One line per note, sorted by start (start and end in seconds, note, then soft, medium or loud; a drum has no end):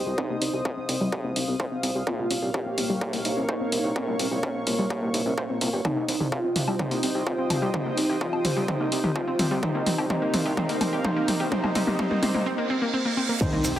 0.00 0.15 C4 medium
0.00 0.14 G4 medium
0.00 2.03 C5 medium
0.00 2.03 D#5 medium
0.00 0.16 G5 medium
0.00 2.03 D#6 medium
0.06 0.14 C2 medium
0.06 0.15 G4 medium
0.18 0.86 C4 medium
0.18 0.27 C4 medium
0.18 0.79 D#4 loud
0.18 0.86 G4 medium
0.18 0.86 C5 medium
0.18 5.81 F5 medium
0.18 kick loud
0.30 0.38 C2 medium
0.30 0.35 A#3 medium
0.42 0.50 C2 medium
0.42 0.53 C4 medium
0.42 open hi-hat loud
0.54 0.61 C2 medium
0.54 0.65 G4 medium
0.65 0.74 C4 medium
0.65 kick loud
0.77 0.86 C4 medium
0.89 0.97 C2 medium
0.89 2.04 C4 medium
0.89 1.00 C4 medium
0.89 2.04 G4 medium
0.89 2.04 C5 medium
0.89 open hi-hat loud
1.01 1.09 C2 medium
1.01 1.12 G3 loud
1.12 1.21 G4 medium
1.12 kick loud
1.24 1.32 C2 medium
1.24 1.29 A#3 medium
1.36 1.44 C2 medium
1.36 1.47 D#4 medium
1.36 open hi-hat loud
1.48 1.56 C2 medium
1.48 1.56 C4 medium
1.60 1.68 C5 loud
1.60 kick loud
1.72 1.80 C4 medium
1.83 1.91 C2 loud
1.83 1.95 C4 medium
1.83 open hi-hat loud
1.95 2.03 C2 medium
1.95 2.04 G4 medium
2.07 2.75 A#3 medium
2.07 2.15 C4 medium
2.07 2.75 F4 medium
2.07 2.50 F4 loud
2.07 2.75 A#4 medium
2.07 5.81 A#4 medium
2.07 5.81 C#5 medium
2.07 5.81 C#6 loud
2.07 kick loud
2.19 2.27 C2 medium
2.19 2.24 A#3 medium
2.31 2.38 C2 medium
2.31 2.42 C#4 medium
2.31 open hi-hat loud
2.42 2.50 C2 medium
2.42 2.54 G4 medium
2.54 2.63 C4 medium
2.54 3.39 G4 loud
2.54 kick loud
2.66 2.74 C4 medium
2.78 2.86 C2 medium
2.78 3.93 A#3 medium
2.78 2.89 C4 medium
2.78 3.93 F4 medium
2.78 3.93 A#4 medium
2.78 open hi-hat loud
2.90 2.97 C2 medium
2.90 3.01 G3 loud
3.01 3.10 G4 medium
3.01 kick loud
3.13 3.21 C2 medium
3.13 3.18 A#3 medium
3.13 open hi-hat medium
3.25 3.33 C2 medium
3.25 3.36 D#4 medium
3.25 open hi-hat loud
3.37 3.45 C2 medium
3.37 3.45 C#4 medium
3.49 3.92 D#4 medium
3.49 3.57 C5 loud
3.49 kick loud
3.61 3.69 C4 medium
3.72 3.80 C2 medium
3.72 3.84 C4 medium
3.72 open hi-hat loud
3.84 3.92 C2 medium
3.84 3.93 G4 medium
3.96 4.64 A#3 medium
3.96 4.04 C4 medium
3.96 4.57 C#4 loud
3.96 4.64 F4 medium
3.96 4.64 A#4 medium
3.96 kick loud
4.08 4.16 C2 medium
4.08 4.13 A#3 medium
4.19 4.27 C2 medium
4.19 4.31 C#4 medium
4.19 open hi-hat loud
4.31 4.39 C2 medium
4.31 4.43 G4 medium
4.43 4.52 C4 medium
4.43 kick loud
4.55 4.63 C4 medium
4.67 4.75 C2 loud
4.67 5.47 A#3 medium
4.67 4.78 C4 medium
4.67 5.47 F4 medium
4.67 5.47 A#4 medium
4.67 open hi-hat loud
4.79 4.86 C2 medium
4.79 4.90 G3 loud
4.90 4.99 G4 medium
4.90 kick loud
5.02 5.10 C2 medium
5.02 5.07 A#3 medium
5.14 5.22 C2 medium
5.14 5.25 D#4 medium
5.14 open hi-hat loud
5.26 5.34 C2 medium
5.26 5.34 C#4 medium
5.38 5.46 C5 loud
5.38 kick loud
5.50 5.58 A#3 medium
5.50 5.58 C4 medium
5.50 5.58 F4 medium
5.50 5.58 A#4 loud
5.61 5.69 C2 medium
5.61 5.70 A#3 medium
5.61 5.73 C4 medium
5.61 5.70 F4 medium
5.61 5.70 A#4 loud
5.61 open hi-hat loud
5.73 5.81 G1 medium
5.73 5.82 G4 medium
5.85 6.53 C4 medium
5.85 5.93 C4 medium
5.85 6.28 D#4 loud
5.85 6.53 G4 medium
5.85 9.59 C5 medium
5.85 6.53 C5 medium
5.85 9.59 D#5 medium
5.85 9.59 G5 medium
5.85 9.59 D#6 loud
5.85 kick loud
5.85 mid tom soft
5.85 riser medium
5.85 low woodblock medium
5.97 6.05 C2 medium
5.97 6.02 A#3 medium
6.08 6.16 C2 medium
6.08 6.20 C4 medium
6.08 open hi-hat loud
6.20 6.28 C2 medium
6.20 6.32 G4 medium
6.20 mid tom soft
6.32 6.41 C4 medium
6.32 6.77 F4 medium
6.32 kick loud
6.44 6.52 C4 medium
6.56 6.64 C2 medium
6.56 6.78 C4 medium
6.56 6.67 C4 medium
6.56 6.78 G4 medium
6.56 6.78 C5 medium
6.56 open hi-hat loud
6.56 mid tom medium
6.68 6.75 C2 medium
6.68 6.78 G3 medium
6.68 low woodblock medium
6.79 6.88 C4 medium
6.79 7.47 C4 medium
6.79 7.23 D#4 loud
6.79 7.47 G4 medium
6.79 7.47 C5 medium
6.79 kick loud
6.79 mid tom medium
6.91 6.99 C2 medium
6.91 6.96 A#3 medium
6.91 open hi-hat medium
7.03 7.11 C2 medium
7.03 7.14 C4 medium
7.03 open hi-hat loud
7.15 7.23 C2 medium
7.15 7.26 G4 medium
7.27 7.35 C4 medium
7.27 7.72 F4 medium
7.27 kick loud
7.38 7.47 C4 medium
7.50 7.58 C2 loud
7.50 7.62 C4 medium
7.50 7.72 C4 medium
7.50 7.72 G4 medium
7.50 7.72 C5 medium
7.50 open hi-hat loud
7.50 mid tom medium
7.50 low woodblock soft
7.62 7.70 C2 medium
7.62 7.72 G3 loud
7.74 7.82 C4 medium
7.74 8.42 C4 medium
7.74 8.17 D#4 loud
7.74 8.42 G4 medium
7.74 8.42 C5 medium
7.74 kick loud
7.74 mid tom medium
7.86 7.94 C2 medium
7.86 7.91 A#3 medium
7.97 8.05 C2 medium
7.97 8.09 C4 medium
7.97 open hi-hat loud
8.09 8.17 C2 medium
8.09 8.21 G4 medium
8.21 8.30 C4 medium
8.21 8.67 F4 medium
8.21 kick loud
8.33 8.41 C4 medium
8.33 low woodblock medium
8.45 8.53 C2 medium
8.45 8.66 C4 medium
8.45 8.56 C4 medium
8.45 8.66 G4 medium
8.45 8.66 C5 medium
8.45 open hi-hat loud
8.45 mid tom medium
8.57 8.64 C2 medium
8.57 8.66 G3 loud
8.68 8.77 C4 medium
8.68 9.36 C4 medium
8.68 9.12 D#4 loud
8.68 9.36 G4 medium
8.68 9.36 C5 medium
8.68 kick loud
8.68 mid tom medium
8.80 8.88 C2 medium
8.80 8.85 A#3 medium
8.92 9.00 C2 medium
8.92 9.03 C4 medium
8.92 open hi-hat loud
9.04 9.12 C2 medium
9.04 9.15 G4 medium
9.04 mid tom medium
9.16 9.24 C4 medium
9.16 9.61 F4 loud
9.16 kick loud
9.16 low woodblock medium
9.27 9.36 C4 medium
9.39 9.47 C2 medium
9.39 9.50 C4 medium
9.39 9.61 C4 medium
9.39 9.61 G4 medium
9.39 9.61 C5 medium
9.39 open hi-hat loud
9.39 mid tom medium
9.51 9.59 C2 medium
9.51 9.61 G3 loud
9.63 10.08 C4 medium
9.63 9.71 C4 medium
9.63 10.06 D#4 loud
9.63 10.08 G4 medium
9.63 12.43 A#4 medium
9.63 10.08 C5 medium
9.63 12.43 F5 medium
9.63 kick loud
9.63 mid tom medium
9.75 9.83 C2 medium
9.75 9.80 A#3 medium
9.86 9.94 C2 medium
9.86 9.98 C4 medium
9.86 open hi-hat loud
9.86 mid tom medium
9.98 10.06 C2 medium
9.98 10.08 G4 medium
9.98 low woodblock medium
10.10 10.19 C4 medium
10.10 10.55 C4 medium
10.10 10.54 D#4 loud
10.10 10.55 G4 medium
10.10 10.55 C5 medium
10.10 kick loud
10.10 mid tom medium
10.22 10.27 A#3 medium
10.34 10.42 C2 medium
10.34 10.45 C4 medium
10.34 open hi-hat loud
10.34 mid tom medium
10.46 10.53 C2 medium
10.46 10.55 G4 medium
10.57 10.66 C4 medium
10.57 11.03 C4 medium
10.57 11.01 D#4 loud
10.57 11.03 G4 medium
10.57 11.03 C5 medium
10.57 kick loud
10.57 mid tom medium
10.69 10.77 C2 medium
10.69 10.74 A#3 medium
10.69 open hi-hat medium
10.81 10.89 C2 medium
10.81 10.92 C4 medium
10.81 open hi-hat loud
10.81 mid tom medium
10.81 low woodblock medium
10.93 11.01 C2 medium
10.93 11.03 G4 medium
11.05 11.13 C4 medium
11.05 11.50 C4 medium
11.05 11.48 D#4 loud
11.05 11.50 G4 medium
11.05 11.50 C5 medium
11.05 kick loud
11.05 mid tom medium
11.16 11.22 A#3 medium
11.28 11.36 C2 medium
11.28 11.39 C4 medium
11.28 open hi-hat loud
11.28 mid tom medium
11.40 11.48 C2 medium
11.40 11.50 G4 medium
11.52 11.74 C4 medium
11.52 11.60 C4 medium
11.52 11.74 D#4 loud
11.52 11.74 G4 medium
11.52 11.74 C5 medium
11.52 kick loud
11.52 mid tom medium
11.64 11.72 C2 medium
11.64 11.69 A#3 medium
11.64 mid tom medium
11.64 low woodblock medium
11.75 11.83 C2 loud
11.75 11.84 C4 medium
11.75 11.97 C4 medium
11.75 11.97 D#4 loud
11.75 11.97 G4 medium
11.75 11.97 C5 medium
11.75 open hi-hat loud
11.75 mid tom medium
11.87 11.95 C2 medium
11.87 11.92 A#3 medium
11.87 mid tom medium
11.99 12.08 C4 medium
11.99 12.21 C4 medium
11.99 12.21 D#4 loud
11.99 12.21 G4 medium
11.99 12.21 C5 medium
11.99 kick loud
11.99 mid tom loud
12.11 12.16 A#3 medium
12.11 mid tom medium
12.23 12.31 C2 medium
12.23 12.31 C4 medium
12.23 12.44 C4 medium
12.23 12.44 D#4 loud
12.23 12.44 G4 medium
12.23 12.44 C5 medium
12.23 open hi-hat loud
12.23 mid tom loud
12.34 12.42 C2 medium
12.34 12.40 A#3 medium
12.34 mid tom medium
12.46 12.55 C4 medium
12.46 reverse cymbal medium
12.58 12.63 A#3 medium
12.70 12.78 C4 medium
12.82 12.87 A#3 medium
12.94 13.02 C4 medium
13.05 13.10 A#3 medium
13.17 13.26 C4 medium
13.29 13.34 A#3 medium
13.40 13.79 D#3 loud
13.40 13.49 C4 medium
13.40 13.79 C4 medium
13.40 13.79 D#4 loud
13.40 13.79 G4 medium
13.40 13.79 C5 medium
13.40 kick loud
13.40 crash loud
13.40 impact medium
13.40 low woodblock medium
13.40 shaker medium
13.53 13.60 C2 medium
13.53 13.58 A#3 medium
13.64 13.72 C2 medium
13.64 13.76 C4 medium
13.64 open hi-hat loud
13.64 shaker loud